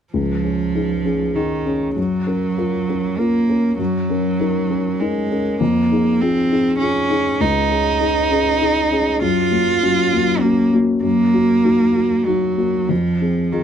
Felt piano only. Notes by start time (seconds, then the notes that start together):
0.13 C#2
0.43 C#4 G#4
0.75 D#4 G#4
1.05 C#4 G#4
1.35 D#4 G#4
1.66 C#4 G#4
1.96 F#2
2.27 C#4 A#4
2.58 F4 A#4
2.89 C#4 A#4
3.18 F4 A#4
3.49 C#4 A#4
3.79 F#2
4.09 C#4 A#4
4.40 D#4 A#4
4.70 C#4 A#4
5.01 D#4 A#4
5.32 C#4 A#4
5.61 F2
5.91 D#4 G#4
6.21 F4 G#4
6.51 D#4 G#4
6.81 F4 G#4
7.10 D#4 G#4
7.40 C#2
7.70 C#4 G#4
8.00 D#4 G#4
8.31 C#4 G#4
8.61 D#4 G#4
8.91 C#4 G#4
9.22 F#2
9.51 F#3 A#3
9.82 F#3 C#4
10.12 F#3 A#3
10.43 C#4 F#4
10.73 A#3 F#4
11.03 F#2
11.33 A#3 F#4
11.65 D#4 F#4
11.94 A#3 F#4
12.26 D#4 F#4
12.57 A#3 F#4
12.89 F2
13.21 C4 G#4
13.52 F4 G#4